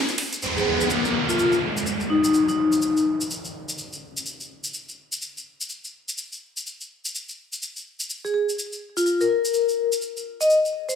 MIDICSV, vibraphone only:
0, 0, Header, 1, 2, 480
1, 0, Start_track
1, 0, Tempo, 480000
1, 420, Time_signature, 4, 2, 24, 8
1, 10953, End_track
2, 0, Start_track
2, 0, Title_t, "Vibraphone"
2, 0, Program_c, 0, 11
2, 566, Note_on_c, 0, 68, 74
2, 626, Note_off_c, 0, 68, 0
2, 662, Note_on_c, 0, 68, 68
2, 755, Note_off_c, 0, 68, 0
2, 1287, Note_on_c, 0, 65, 73
2, 1347, Note_off_c, 0, 65, 0
2, 1381, Note_on_c, 0, 65, 66
2, 1474, Note_off_c, 0, 65, 0
2, 2100, Note_on_c, 0, 63, 80
2, 2194, Note_off_c, 0, 63, 0
2, 2248, Note_on_c, 0, 63, 70
2, 2307, Note_off_c, 0, 63, 0
2, 2485, Note_on_c, 0, 63, 79
2, 3147, Note_off_c, 0, 63, 0
2, 8246, Note_on_c, 0, 68, 75
2, 8306, Note_off_c, 0, 68, 0
2, 8340, Note_on_c, 0, 68, 66
2, 8434, Note_off_c, 0, 68, 0
2, 8968, Note_on_c, 0, 65, 81
2, 9027, Note_off_c, 0, 65, 0
2, 9060, Note_on_c, 0, 65, 69
2, 9154, Note_off_c, 0, 65, 0
2, 9209, Note_on_c, 0, 70, 85
2, 9869, Note_off_c, 0, 70, 0
2, 10406, Note_on_c, 0, 75, 83
2, 10564, Note_off_c, 0, 75, 0
2, 10886, Note_on_c, 0, 72, 77
2, 10946, Note_off_c, 0, 72, 0
2, 10953, End_track
0, 0, End_of_file